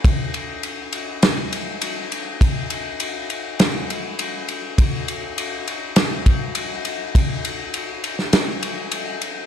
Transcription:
\new DrumStaff \with { instrumentName = "Drums" } \drummode { \time 4/4 \tempo 4 = 101 <bd cymr>8 cymr8 cymr8 cymr8 <cymr sn>8 cymr8 cymr8 cymr8 | <bd cymr>8 cymr8 cymr8 cymr8 <cymr sn>8 cymr8 cymr8 cymr8 | <bd cymr>8 cymr8 cymr8 cymr8 <cymr sn>8 <bd cymr>8 cymr8 cymr8 | <bd cymr>8 cymr8 cymr8 cymr16 sn16 <cymr sn>8 cymr8 cymr8 cymr8 | }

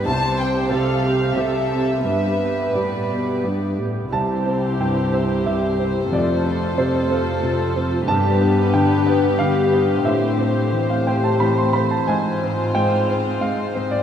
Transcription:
<<
  \new Staff \with { instrumentName = "Violin section" } { \time 3/4 \key c \major \tempo 4 = 90 a''8 g''8 f''4 e''4 | e''4 d''4. r8 | r2. | r2. |
r2. | r2. | r2. | }
  \new Staff \with { instrumentName = "Violin section" } { \time 3/4 \key c \major << { c''4 a'8 g'8 a'4 | b'2~ b'8 r8 | c''2.~ | c''2. |
b'2. | c''2.~ | c''2. | } \\ { r2. | r2. | g'2. | a'2. |
g'2.~ | g'2~ g'8 r8 | f'2. | } >> }
  \new Staff \with { instrumentName = "Harp" } { \time 3/4 \key c \major r2. | r2. | c8 e'8 c''8 e''8 g'8 e'8 | f,8 f'8 c''8 f''8 a'8 f'8 |
g,8 d'8 b'8 d''8 g'8 d'8 | a,8 c'8 c''8 g'8 c'8 e8 | aes,8 c'8 c''8 f'8 c'8 aes8 | }
  \new Staff \with { instrumentName = "Grand piano" } { \time 3/4 \key c \major r2. | r2. | a''4 g''4 e''4 | d''4 c''4. r8 |
a''4 g''4 f''4 | e''4~ e''16 f''16 g''16 a''16 b''16 c'''16 b''16 a''16 | aes''4 g''4 f''8. d''16 | }
  \new Staff \with { instrumentName = "Grand piano" } { \time 3/4 \key c \major c,4 <g c' g'>4 <g c' g'>4 | g,4 <g b g'>4 <g b g'>4 | c,8 c'8 g,8 c'8 g,8 c'8 | f,8 c'8 c8 c'8 c8 c'8 |
g,8 b8 d8 b8 d8 b8 | a,8 c'8 e8 c'8 e8 c'8 | aes,8 c'8 aes8 c'8 aes8 c'8 | }
  \new Staff \with { instrumentName = "Viola section" } { \time 3/4 \key c \major << { r8 g'4 g'4 g'8 | g'8 g'4 g'4 g'8 | e'2. | f'2. |
d'2. | c'2.~ | c'2. | } \\ { r8 c'4 c'4 c'8 | b8 b4 b4 b8 | c'2. | a2. |
b2. | a2~ a8 r8 | c'2. | } >> }
  \new Staff \with { instrumentName = "Cello section" } { \clef bass \time 3/4 \key c \major c4 c4 c4 | g,4 a,8 b,8 g,8 a,8 | c,2. | f,2. |
g,2. | a,2~ a,8 r8 | aes,2. | }
>>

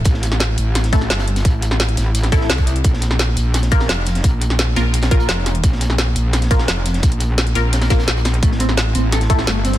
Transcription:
<<
  \new Staff \with { instrumentName = "Synth stab" } { \time 4/4 \key bes \lydian \tempo 4 = 172 <a e' a'>2~ <a e' a'>8 <a e' a'>16 r4 r16 | r2 r8 <a e' a'>4. | r2 r8 <bes f' bes'>16 r4 r16 | r4. <bes f' bes'>8 r8 <bes f' bes'>4.~ |
<bes f' bes'>2~ <bes f' bes'>8 <bes f' bes'>16 r4 r16 | r4. <bes f' bes'>8 r8 <bes f' bes'>16 r4 r16 | r2 r8 <a e' a'>16 r4 r16 | }
  \new Staff \with { instrumentName = "Clean electric guitar" } { \time 4/4 \key bes \lydian r1 | r1 | r1 | r1 |
r1 | r1 | a8 c'8 r8 c'8 a'8 e'8 a8 c'8 | }
  \new Staff \with { instrumentName = "Wobble bass" } { \clef bass \time 4/4 \key bes \lydian a,,4. a,,4. g,,4 | a,,4. a,,4 a,,8 c,4 | bes,,4. bes,,4. f,,4 | bes,,4. bes,,4. f,,4 |
bes,,4. bes,,4. f,,4 | bes,,4. bes,,4. bes,,4 | a,,4. a,,4. g,,4 | }
  \new DrumStaff \with { instrumentName = "Drums" } \drummode { \time 4/4 <hh bd>16 sn16 <hh sn>16 sn16 <hh sn>8 hh8 <hh sn>16 <hh sn>16 <hh bd sn>16 sn16 <hh sn>16 <hh sn>16 hh16 <hh sn>16 | <hh bd>8 hh16 sn16 <hh sn>16 hh16 <hh sn>8 hh16 <hh sn>16 <hh bd sn>16 sn16 <hh hho sn>16 <hh bd>16 hh16 hh16 | <hh bd>16 sn16 <hh sn>16 sn16 <hh sn>8 hh8 <hh sn>16 <hh sn>16 <hh bd sn>16 sn16 <hh sn>8 <hh sn>16 <hh sn>16 | <hh bd>8 hh16 sn16 <hh sn>8 <hh sn>8 hh16 <hh sn>16 <hh bd>16 hh16 <hh sn>8 <hh sn>16 hh16 |
<hh bd>16 sn16 <hh sn>16 sn16 <hh sn>8 hh8 <hh sn>16 <hh sn>16 <hh bd sn>16 sn16 <hh sn>8 <hh sn>16 <hh sn>16 | <hh bd>16 hh16 hh8 <hh sn>16 hh16 <hh sn>8 <hh sn>16 <hh sn>16 <hh bd sn>16 <hh sn>16 <hh sn>16 hh16 <hh sn>16 hh16 | <hh bd>16 sn16 <hh sn>16 sn16 <hh sn>8 hh8 <hh sn>16 <hh sn>16 <hh bd sn>16 sn16 <hh sn>8 <hh sn>16 <hh sn>16 | }
>>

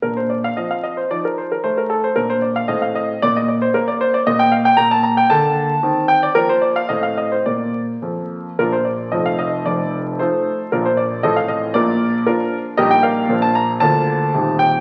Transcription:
<<
  \new Staff \with { instrumentName = "Grand piano" } { \time 2/4 \key bes \major \tempo 4 = 114 << { bes'16 c''16 d''16 f''16 ees''16 f''16 ees''16 c''16 | d''16 bes'16 c''16 bes'16 c''16 bes'16 a'16 c''16 | bes'16 c''16 d''16 f''16 ees''16 f''16 ees''8 | d''16 ees''16 d''16 c''16 bes'16 d''16 c''16 d''16 |
ees''16 g''16 f''16 g''16 bes''16 a''16 bes''16 g''16 | a''4. g''16 d''16 | bes'16 c''16 d''16 f''16 ees''16 f''16 ees''16 c''16 | d''4 r4 |
<d' f' bes'>16 c''16 d''8 ees''16 f''16 ees''8 | d''4 <f' a' c''>4 | <d' f' bes'>16 c''16 d''8 <a' c'' ees''>16 f''16 ees''8 | <f' bes' d''>4 <d' f' bes'>4 |
<g' bes' ees''>16 g''16 <bes' d'' f''>8. a''16 bes''8 | a''4. g''8 | } \\ { d'4 c'4 | ees'2 | d'4 c'4 | bes2 |
bes4 bes4 | bes4 c'4 | bes4 c'4 | bes2 |
r2 | r2 | r2 | r2 |
r2 | r2 | } >> }
  \new Staff \with { instrumentName = "Grand piano" } { \clef bass \time 2/4 \key bes \major bes,4 f4 | f4 a4 | bes,4 a,4 | bes,4 bes4 |
bes,4 bes,4 | d4 ees4 | f4 a,4 | bes,4 f,4 |
<bes,, bes, f bes>4 <f,, f, f a f'>4 | <f,, f,>4 <f a ees'>4 | <bes,, bes, f bes>4 <a,, a, f c' f'>4 | <bes,, bes,>4 <f bes>4 |
<bes,, bes, g bes ees'>4 <bes,, bes, f bes d'>4 | <d, d f bes f'>4 <ees,, ees, g c' ees'>4 | }
>>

